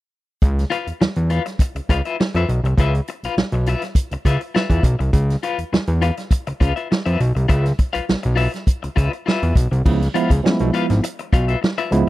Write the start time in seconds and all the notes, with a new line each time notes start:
0.42 C#2, kick, closed hi-hat
0.59 snare, closed hi-hat
0.70 F4 B4 F5, closed hi-hat
0.87 E2, closed hi-hat
1.01 E2, muted clean electric guitar stroke, snare
1.16 E2, closed hi-hat
1.30 F4 B4 F5, closed hi-hat
1.46 muted clean electric guitar stroke, snare, closed hi-hat
1.59 muted clean electric guitar stroke, kick, closed hi-hat
1.75 C#2, muted clean electric guitar stroke, closed hi-hat
1.89 C#2 F4 B4 F5, kick, closed hi-hat
2.05 F4 B4 E5, closed hi-hat
2.20 muted clean electric guitar stroke, snare
2.35 F2 F4 B4 E5, closed hi-hat
2.49 B1, muted clean electric guitar stroke, closed hi-hat
2.64 C2, muted clean electric guitar stroke, closed hi-hat
2.77 C#2 F4 B4 E5, kick, closed hi-hat
2.95 closed hi-hat
3.08 muted clean electric guitar stroke, closed hi-hat
3.23 B1 F4 B4 F5, closed hi-hat
3.37 B1, snare
3.52 B1, muted clean electric guitar stroke, closed hi-hat
3.66 F4 B4 E5, closed hi-hat
3.82 muted clean electric guitar stroke, snare, closed hi-hat
3.95 kick, closed hi-hat
4.11 C#2, muted clean electric guitar stroke, closed hi-hat
4.25 C#2 F4 B4 E5, kick, closed hi-hat
4.41 muted clean electric guitar stroke, closed hi-hat
4.55 F4 B4 E5, snare
4.70 E2, kick, closed hi-hat
4.83 B1, muted clean electric guitar stroke, kick, closed hi-hat
4.99 C2, muted clean electric guitar stroke, closed hi-hat
5.13 C#2, kick, closed hi-hat
5.30 snare, closed hi-hat
5.43 F4 B4 F5, closed hi-hat
5.58 E2, closed hi-hat
5.72 E2, muted clean electric guitar stroke, snare
5.87 E2, closed hi-hat
6.02 F4 B4 F5, closed hi-hat
6.17 muted clean electric guitar stroke, snare, closed hi-hat
6.31 muted clean electric guitar stroke, kick, closed hi-hat
6.47 C#2, muted clean electric guitar stroke, closed hi-hat
6.60 C#2 F4 B4 F5, kick, closed hi-hat
6.76 F4 B4 E5, closed hi-hat
6.91 muted clean electric guitar stroke, snare
7.06 F2 F4 B4 E5, closed hi-hat
7.20 B1, muted clean electric guitar stroke, closed hi-hat
7.35 C2, muted clean electric guitar stroke, closed hi-hat
7.48 C#2 F4 B4 E5, kick, closed hi-hat
7.65 snare, closed hi-hat
7.79 muted clean electric guitar stroke, kick, closed hi-hat
7.93 B1 F4 B4 F5, closed hi-hat
8.09 B1, snare
8.23 B1, muted clean electric guitar stroke, closed hi-hat
8.36 F4 B4 E5, open hi-hat
8.53 muted clean electric guitar stroke, snare, closed hi-hat
8.67 kick, closed hi-hat
8.83 C#2, muted clean electric guitar stroke, closed hi-hat
8.96 C#2 F4 B4 E5, kick, closed hi-hat
9.12 muted clean electric guitar stroke, closed hi-hat
9.26 F4 B4 E5, snare
9.43 E2, closed hi-hat
9.55 B1, muted clean electric guitar stroke, kick, closed hi-hat
9.71 C2, muted clean electric guitar stroke, closed hi-hat
9.85 C#2 F3 G#3 B3 E4, kick, crash
10.02 snare, closed hi-hat
10.14 F3 G#3 B3 E4 F4 B4 F5, closed hi-hat
10.30 C#2, kick, closed hi-hat
10.44 F3 G#3 B3 C#4, muted clean electric guitar stroke, snare
10.51 E4
10.59 B1, closed hi-hat
10.74 F4 B4 F5, closed hi-hat
10.90 G#1, muted clean electric guitar stroke, snare, closed hi-hat
11.04 muted clean electric guitar stroke, closed hi-hat
11.19 muted clean electric guitar stroke, closed hi-hat
11.33 B1 F4 B4 F5, kick, closed hi-hat
11.48 F4 B4 E5, closed hi-hat
11.62 muted clean electric guitar stroke, snare
11.78 F4 B4 E5, closed hi-hat
11.91 C#2 F3 G#3 B3 E4, muted clean electric guitar stroke, closed hi-hat